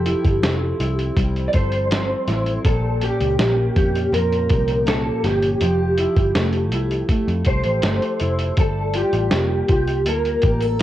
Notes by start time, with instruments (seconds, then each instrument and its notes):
Already playing: picked electric bass F1, steel-string acoustic guitar F3 A4, clean electric guitar G4
0.06 steel-string acoustic guitar E4, closed hi-hat
0.25 picked electric bass G1, kick, closed hi-hat
0.43 picked electric bass F1, steel-string acoustic guitar C4, snare, closed hi-hat
0.80 picked electric bass C2, steel-string acoustic guitar E4, closed hi-hat
0.99 closed hi-hat
1.17 picked electric bass C2, steel-string acoustic guitar G3, kick, closed hi-hat
1.36 closed hi-hat
1.48 clean electric guitar D5
1.53 picked electric bass G1, steel-string acoustic guitar A4, clean electric guitar C5, kick, closed hi-hat
1.72 closed hi-hat
1.91 steel-string acoustic guitar C4, snare, closed hi-hat
2.28 picked electric bass A1, steel-string acoustic guitar E4, snare, closed hi-hat
2.46 closed hi-hat
2.65 picked electric bass A#1, steel-string acoustic guitar A#2 G4, clean electric guitar A4, kick, closed hi-hat
3.01 steel-string acoustic guitar C#4, clean electric guitar G4, closed hi-hat
3.21 picked electric bass C#2, closed hi-hat
3.39 picked electric bass A#1, steel-string acoustic guitar A#3, snare, closed hi-hat
3.76 picked electric bass F2, steel-string acoustic guitar C#4, clean electric guitar G4, kick, closed hi-hat
3.96 closed hi-hat
4.13 picked electric bass F2, steel-string acoustic guitar F3, clean electric guitar A#4, closed hi-hat
4.32 closed hi-hat
4.49 picked electric bass C2, steel-string acoustic guitar G4, kick, closed hi-hat
4.68 closed hi-hat
4.86 steel-string acoustic guitar A#3, clean electric guitar A4, snare, closed hi-hat
5.24 picked electric bass G1, steel-string acoustic guitar C#4, clean electric guitar G4, snare, closed hi-hat
5.42 closed hi-hat
5.61 picked electric bass F1, steel-string acoustic guitar F3 G4, closed hi-hat
5.98 steel-string acoustic guitar E4, closed hi-hat
6.16 picked electric bass G1, kick, closed hi-hat
6.35 picked electric bass F1, steel-string acoustic guitar A3, snare, closed hi-hat
6.53 closed hi-hat
6.72 picked electric bass C2, steel-string acoustic guitar E4, closed hi-hat
6.91 closed hi-hat
7.09 steel-string acoustic guitar A3, kick, closed hi-hat
7.28 picked electric bass F2, closed hi-hat
7.45 picked electric bass C2, steel-string acoustic guitar G4, clean electric guitar C5, kick, closed hi-hat
7.64 picked electric bass A1, closed hi-hat
7.82 picked electric bass G1, steel-string acoustic guitar A3, snare, closed hi-hat
8.02 closed hi-hat
8.20 picked electric bass F1, steel-string acoustic guitar E4, closed hi-hat
8.39 closed hi-hat
8.57 picked electric bass G1, steel-string acoustic guitar G3, clean electric guitar A4, kick, closed hi-hat
8.94 steel-string acoustic guitar F4, clean electric guitar G4, closed hi-hat
9.13 picked electric bass A1, closed hi-hat
9.31 picked electric bass F1, steel-string acoustic guitar A#3, snare, closed hi-hat
9.68 picked electric bass C2, steel-string acoustic guitar F4, clean electric guitar G4, kick, closed hi-hat
9.88 closed hi-hat
10.06 picked electric bass D2, steel-string acoustic guitar A#3, clean electric guitar A#4, closed hi-hat
10.25 closed hi-hat
10.42 picked electric bass A1, steel-string acoustic guitar G4, kick, closed hi-hat
10.61 steel-string acoustic guitar A4, closed hi-hat
10.79 closed hi-hat